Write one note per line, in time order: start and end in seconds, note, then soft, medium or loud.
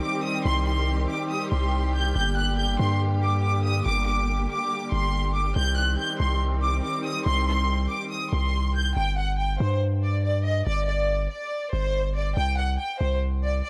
0.00 2.12 D#3 medium
0.00 5.52 G3 medium
0.00 2.12 C4 medium
0.00 8.92 G4 loud
0.00 0.20 D6 medium
0.24 0.41 D#6 medium
0.45 1.07 C2 loud
0.45 0.62 C6 loud
0.67 1.07 C6 loud
1.09 1.26 D6 medium
1.31 1.47 D#6 medium
1.52 2.13 C2 loud
1.52 1.92 C6 medium
1.95 2.11 G6 medium
2.15 2.77 G1 loud
2.15 5.53 D3 medium
2.15 5.53 A#3 medium
2.15 2.32 G6 loud
2.37 2.54 F#6 medium
2.58 2.75 G6 medium
2.79 3.82 G2 loud
2.79 2.96 C6 medium
3.22 3.39 D6 medium
3.43 3.60 D6 medium
3.65 3.81 D#6 medium
3.86 4.47 G1 loud
3.86 4.02 D6 loud
4.07 4.47 D6 medium
4.50 4.90 D6 medium
4.92 5.54 G1 loud
4.92 5.32 C6 medium
5.35 5.52 D6 medium
5.56 5.97 C2 loud
5.56 8.93 D#3 medium
5.56 8.93 G3 medium
5.56 8.93 C4 medium
5.56 5.73 G6 loud
5.77 5.94 F#6 medium
5.99 6.15 G6 medium
6.20 6.81 C2 loud
6.20 6.37 C6 medium
6.63 6.79 D6 medium
6.84 7.00 D6 medium
7.05 7.22 D#6 medium
7.26 7.88 C2 loud
7.26 7.43 C6 loud
7.48 7.88 C6 loud
7.90 8.07 D6 medium
8.11 8.28 D#6 medium
8.33 8.94 C2 loud
8.33 8.73 C6 medium
8.75 8.92 G6 medium
8.97 9.58 G1 loud
8.97 9.13 G5 loud
9.18 9.34 F#5 medium
9.39 9.56 G5 medium
9.60 10.63 G2 loud
9.60 9.77 C5 medium
10.03 10.20 D5 medium
10.24 10.41 D5 medium
10.45 10.62 D#5 medium
10.67 11.28 G1 loud
10.67 10.84 D5 loud
10.88 11.28 D5 medium
11.31 11.71 D5 medium
11.73 12.34 G1 loud
11.73 12.13 C5 medium
12.16 12.32 D5 medium
12.37 12.78 C2 loud
12.37 12.54 G5 loud
12.58 12.75 F#5 medium
12.80 12.96 G5 medium
13.01 13.62 C2 loud
13.01 13.17 C5 medium
13.43 13.60 D5 medium
13.65 13.70 D5 medium